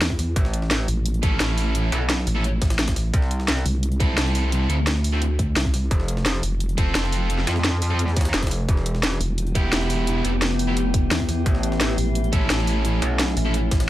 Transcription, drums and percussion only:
0.02 snare, closed hi-hat, open hi-hat
0.10 kick
0.19 snare, closed hi-hat, open hi-hat
0.36 kick, closed hi-hat
0.45 snare
0.54 closed hi-hat
0.62 snare
0.71 snare, closed hi-hat
0.80 snare
0.88 closed hi-hat, open hi-hat
1.06 closed hi-hat
1.14 closed hi-hat
1.23 kick, closed hi-hat
1.40 snare, closed hi-hat
1.49 snare
1.58 closed hi-hat, open hi-hat
1.75 closed hi-hat
1.92 closed hi-hat
2.10 snare, closed hi-hat
2.18 snare
2.27 closed hi-hat, open hi-hat
2.44 closed hi-hat
2.62 kick, snare, closed hi-hat
2.70 snare, closed hi-hat
2.79 snare, closed hi-hat
2.88 kick, snare, closed hi-hat
2.96 snare, closed hi-hat, open hi-hat
3.14 kick, closed hi-hat
3.22 snare
3.31 closed hi-hat
3.40 snare
3.48 snare, closed hi-hat
3.57 snare
3.66 closed hi-hat, open hi-hat
3.83 closed hi-hat
3.92 closed hi-hat
4.00 kick, closed hi-hat
4.18 snare, closed hi-hat
4.26 snare
4.35 closed hi-hat, open hi-hat
4.52 closed hi-hat
4.70 closed hi-hat
4.87 snare, closed hi-hat
4.96 snare
5.04 closed hi-hat, open hi-hat
5.22 closed hi-hat
5.39 kick, closed hi-hat
5.56 snare, closed hi-hat, open hi-hat
5.65 kick
5.74 snare, closed hi-hat, open hi-hat
5.91 kick, closed hi-hat
6.00 snare
6.08 closed hi-hat
6.17 snare
6.26 snare, closed hi-hat
6.34 snare
6.43 closed hi-hat, open hi-hat
6.60 closed hi-hat
6.69 closed hi-hat
6.78 kick, closed hi-hat
6.95 snare, closed hi-hat
7.04 snare
7.12 closed hi-hat, open hi-hat
7.30 closed hi-hat
7.38 snare
7.47 snare, closed hi-hat
7.56 snare
7.64 snare, closed hi-hat
7.82 closed hi-hat, open hi-hat
7.99 closed hi-hat
8.08 snare
8.16 kick, snare, closed hi-hat
8.21 snare, closed hi-hat
8.25 snare, closed hi-hat
8.34 snare, closed hi-hat
8.43 kick, snare, closed hi-hat
8.47 snare, closed hi-hat
8.51 snare, closed hi-hat, open hi-hat
8.69 kick, closed hi-hat
8.77 snare
8.86 closed hi-hat
8.95 snare
9.03 snare, closed hi-hat
9.12 snare
9.21 closed hi-hat, open hi-hat
9.38 closed hi-hat
9.47 closed hi-hat
9.55 kick, closed hi-hat
9.73 snare, closed hi-hat
9.81 snare
9.90 closed hi-hat, open hi-hat
10.07 closed hi-hat
10.25 closed hi-hat
10.42 snare, closed hi-hat
10.51 snare
10.59 closed hi-hat, open hi-hat
10.77 closed hi-hat
10.94 kick, closed hi-hat
11.11 snare, closed hi-hat, open hi-hat
11.20 kick
11.29 snare, closed hi-hat, open hi-hat
11.46 kick, closed hi-hat
11.55 snare
11.63 closed hi-hat
11.72 snare
11.81 snare, closed hi-hat
11.89 snare
11.98 closed hi-hat, open hi-hat
12.15 closed hi-hat
12.24 closed hi-hat
12.33 kick, closed hi-hat
12.50 snare, closed hi-hat
12.59 snare
12.67 closed hi-hat, open hi-hat
12.85 closed hi-hat
13.02 closed hi-hat
13.19 snare, closed hi-hat
13.28 snare
13.37 closed hi-hat, open hi-hat
13.54 closed hi-hat
13.71 kick, snare, closed hi-hat
13.80 snare, closed hi-hat

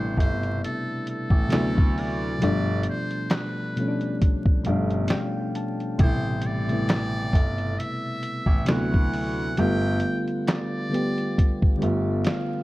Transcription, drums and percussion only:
0.17 kick, closed hi-hat
0.43 closed hi-hat
0.64 closed hi-hat
1.07 closed hi-hat
1.30 kick
1.50 finger snap, snare, clap, closed hi-hat
1.78 kick
1.98 open hi-hat
2.42 closed hi-hat
2.83 closed hi-hat
3.11 closed hi-hat
3.30 finger snap, snare, clap, closed hi-hat
3.77 closed hi-hat
4.01 closed hi-hat
4.22 kick, closed hi-hat
4.46 kick
4.65 closed hi-hat
4.90 closed hi-hat
5.08 finger snap, snare, clap, closed hi-hat
5.55 closed hi-hat
5.80 closed hi-hat
5.99 kick, closed hi-hat
6.42 closed hi-hat
6.69 closed hi-hat
6.89 finger snap, snare, clap, closed hi-hat
7.33 kick, closed hi-hat
7.58 closed hi-hat
7.80 closed hi-hat
8.23 closed hi-hat
8.46 kick
8.66 finger snap, snare, clap, closed hi-hat
8.94 kick
9.13 open hi-hat
9.57 closed hi-hat
10.00 closed hi-hat
10.28 closed hi-hat
10.47 finger snap, snare, clap, closed hi-hat
10.94 closed hi-hat
11.18 closed hi-hat
11.38 kick, closed hi-hat
11.62 kick
11.82 closed hi-hat
12.25 finger snap, snare, clap, closed hi-hat

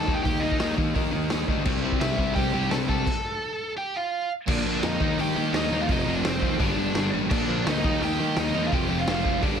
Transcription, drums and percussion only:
0.08 kick
0.25 kick, open hi-hat
0.52 kick
0.60 snare, open hi-hat
0.78 kick
0.95 kick, open hi-hat
1.30 snare, open hi-hat
1.48 kick
1.65 kick, crash
1.92 kick
2.01 snare, open hi-hat
2.18 kick
2.36 kick, open hi-hat
2.71 snare, open hi-hat
2.89 kick
3.07 kick, crash
4.48 kick, crash
4.83 snare, open hi-hat
5.01 kick
5.18 open hi-hat
5.54 snare, open hi-hat
5.89 kick, open hi-hat
6.25 snare, open hi-hat
6.42 kick
6.60 kick, open hi-hat
6.95 snare, open hi-hat
7.31 kick, crash
7.67 snare, open hi-hat
7.84 kick
8.02 open hi-hat
8.36 snare, open hi-hat
8.72 kick, open hi-hat
9.07 snare, open hi-hat
9.25 kick
9.42 kick, open hi-hat

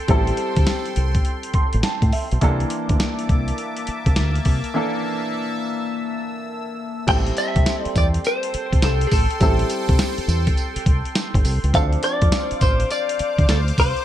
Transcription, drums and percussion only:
0.08 kick, closed hi-hat
0.27 closed hi-hat
0.37 closed hi-hat
0.56 kick, closed hi-hat
0.67 snare, closed hi-hat
0.85 closed hi-hat
0.96 closed hi-hat
1.15 kick, closed hi-hat
1.25 closed hi-hat
1.43 closed hi-hat
1.54 kick, closed hi-hat
1.73 closed hi-hat
1.83 snare, closed hi-hat
2.02 kick, closed hi-hat
2.12 open hi-hat
2.31 closed hi-hat
2.41 kick, closed hi-hat
2.60 closed hi-hat
2.70 closed hi-hat
2.89 kick, closed hi-hat
3.00 snare, closed hi-hat
3.19 closed hi-hat
3.29 kick, closed hi-hat
3.48 closed hi-hat
3.58 closed hi-hat
3.77 closed hi-hat
3.87 closed hi-hat
4.06 kick, closed hi-hat
4.16 snare, closed hi-hat
4.35 closed hi-hat
4.45 kick, open hi-hat
4.64 closed hi-hat
7.08 kick, closed hi-hat, crash, tambourine
7.26 closed hi-hat
7.37 closed hi-hat, tambourine
7.56 kick, closed hi-hat
7.66 snare, closed hi-hat, tambourine
7.85 closed hi-hat
7.96 kick, closed hi-hat, tambourine
8.14 closed hi-hat
8.24 closed hi-hat, tambourine
8.43 closed hi-hat
8.54 closed hi-hat
8.73 kick, closed hi-hat
8.82 snare, closed hi-hat, tambourine
9.01 closed hi-hat
9.11 kick, open hi-hat, tambourine
9.30 closed hi-hat
9.41 kick, closed hi-hat, tambourine
9.59 closed hi-hat
9.70 closed hi-hat, tambourine
9.89 kick, closed hi-hat
9.99 snare, closed hi-hat, tambourine
10.18 closed hi-hat
10.29 closed hi-hat, tambourine
10.47 kick, closed hi-hat
10.57 closed hi-hat, tambourine
10.76 closed hi-hat
10.86 kick, closed hi-hat
11.05 closed hi-hat
11.15 snare, closed hi-hat, tambourine
11.34 kick, closed hi-hat
11.45 open hi-hat, tambourine
11.64 closed hi-hat
11.74 kick, closed hi-hat, tambourine
11.93 closed hi-hat
12.03 closed hi-hat, tambourine
12.22 kick, closed hi-hat
12.32 snare, closed hi-hat, tambourine
12.51 closed hi-hat
12.61 kick, closed hi-hat, tambourine
12.80 closed hi-hat
12.90 closed hi-hat, tambourine
13.09 closed hi-hat
13.19 closed hi-hat
13.38 kick, closed hi-hat
13.49 snare, closed hi-hat, tambourine
13.68 closed hi-hat
13.78 kick, open hi-hat, tambourine
13.97 closed hi-hat

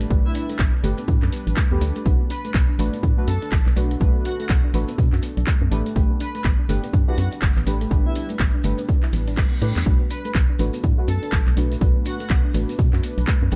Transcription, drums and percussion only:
0.01 closed hi-hat, maracas
0.10 kick, closed hi-hat, maracas
0.35 open hi-hat, maracas
0.49 closed hi-hat, maracas
0.59 kick, clap, closed hi-hat, maracas
0.84 open hi-hat, maracas
0.98 closed hi-hat, maracas
1.08 kick, closed hi-hat, maracas
1.22 clap
1.32 open hi-hat, maracas
1.47 closed hi-hat, maracas
1.57 kick, clap, closed hi-hat, maracas
1.81 open hi-hat, maracas
1.96 closed hi-hat, maracas
2.06 kick, closed hi-hat, maracas
2.30 open hi-hat, maracas
2.44 closed hi-hat, maracas
2.54 kick, clap, closed hi-hat, maracas
2.79 open hi-hat, maracas
2.93 closed hi-hat, maracas
3.03 kick, closed hi-hat, maracas
3.27 open hi-hat, maracas
3.42 closed hi-hat, maracas
3.52 kick, clap, closed hi-hat, maracas
3.66 clap
3.76 open hi-hat, maracas
3.91 closed hi-hat, maracas
4.00 kick, closed hi-hat, maracas
4.25 open hi-hat, maracas
4.40 closed hi-hat, maracas
4.49 kick, clap, closed hi-hat, maracas
4.74 open hi-hat, maracas
4.88 closed hi-hat, maracas
4.98 kick, closed hi-hat, maracas
5.12 clap
5.22 open hi-hat, maracas
5.37 closed hi-hat, maracas
5.47 kick, clap, closed hi-hat, maracas
5.72 open hi-hat, maracas
5.86 closed hi-hat, maracas
5.96 kick, closed hi-hat, maracas
6.20 open hi-hat, maracas
6.35 closed hi-hat, maracas
6.44 kick, clap, closed hi-hat, maracas
6.69 open hi-hat, maracas
6.84 closed hi-hat, maracas
6.93 kick, closed hi-hat, maracas
7.18 open hi-hat, maracas
7.31 closed hi-hat, maracas
7.42 kick, clap, closed hi-hat, maracas
7.56 clap
7.67 open hi-hat, maracas
7.81 closed hi-hat, maracas
7.91 kick, closed hi-hat, maracas
8.15 open hi-hat, maracas
8.29 closed hi-hat, maracas
8.39 kick, clap, closed hi-hat, maracas
8.64 open hi-hat, maracas
8.78 closed hi-hat, maracas
8.88 kick, closed hi-hat, maracas
9.03 clap
9.13 open hi-hat, maracas
9.28 closed hi-hat, maracas
9.37 kick, clap, open hi-hat, maracas
9.61 open hi-hat, maracas
9.76 clap, closed hi-hat, maracas
9.86 kick, closed hi-hat, maracas
10.10 open hi-hat, maracas
10.25 closed hi-hat, maracas
10.35 kick, clap, closed hi-hat, maracas
10.59 open hi-hat, maracas
10.73 closed hi-hat, maracas
10.84 kick, closed hi-hat, maracas
11.08 open hi-hat, maracas
11.23 closed hi-hat, maracas
11.32 kick, clap, closed hi-hat, maracas
11.47 clap
11.57 open hi-hat, maracas
11.72 closed hi-hat, maracas
11.81 kick, closed hi-hat, maracas
12.05 open hi-hat, maracas
12.20 closed hi-hat, maracas
12.30 kick, clap, closed hi-hat, maracas
12.54 open hi-hat, maracas
12.69 closed hi-hat, maracas
12.79 kick, closed hi-hat, maracas
12.93 clap
13.03 open hi-hat, maracas
13.18 closed hi-hat, maracas
13.27 kick, clap, closed hi-hat, maracas
13.51 open hi-hat, maracas

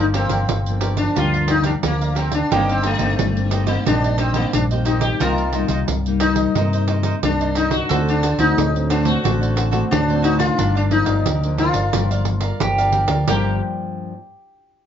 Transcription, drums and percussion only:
0.00 pandeiro
0.14 pandeiro
0.29 pandeiro
0.49 pandeiro
0.66 pandeiro
0.81 pandeiro
0.97 pandeiro
1.16 pandeiro
1.34 pandeiro
1.48 pandeiro
1.64 pandeiro
1.83 pandeiro
2.01 pandeiro
2.16 pandeiro
2.32 pandeiro
2.52 pandeiro
2.69 pandeiro
2.84 pandeiro
2.99 pandeiro
3.19 pandeiro
3.37 pandeiro
3.51 pandeiro
3.67 pandeiro
3.86 pandeiro
4.04 pandeiro
4.18 pandeiro
4.34 pandeiro
4.53 pandeiro
4.71 pandeiro
4.85 pandeiro
5.01 pandeiro
5.20 pandeiro
5.38 pandeiro
5.53 pandeiro
5.68 pandeiro
5.88 pandeiro
6.06 pandeiro
6.20 pandeiro
6.36 pandeiro
6.55 pandeiro
6.73 pandeiro
6.88 pandeiro
7.03 pandeiro
7.23 pandeiro
7.41 pandeiro
7.55 pandeiro
7.71 pandeiro
7.91 pandeiro
8.08 pandeiro
8.23 pandeiro
8.39 pandeiro
8.58 pandeiro
8.76 pandeiro
8.90 pandeiro
9.05 pandeiro
9.25 pandeiro
9.43 pandeiro
9.57 pandeiro
9.73 pandeiro
9.92 pandeiro
10.10 pandeiro
10.24 pandeiro
10.40 pandeiro
10.59 pandeiro
10.77 pandeiro
10.91 pandeiro
11.06 pandeiro
11.26 pandeiro
11.43 pandeiro
11.58 pandeiro
11.74 pandeiro
11.93 pandeiro
12.11 pandeiro
12.25 pandeiro
12.41 pandeiro
12.60 pandeiro
12.78 pandeiro
12.92 pandeiro
13.08 pandeiro
13.28 pandeiro

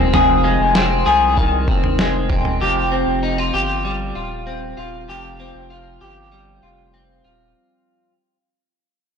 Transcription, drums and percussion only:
0.14 floor tom
0.75 snare
1.37 kick
1.68 kick
1.84 floor tom
1.99 snare
2.30 kick, floor tom
2.45 floor tom

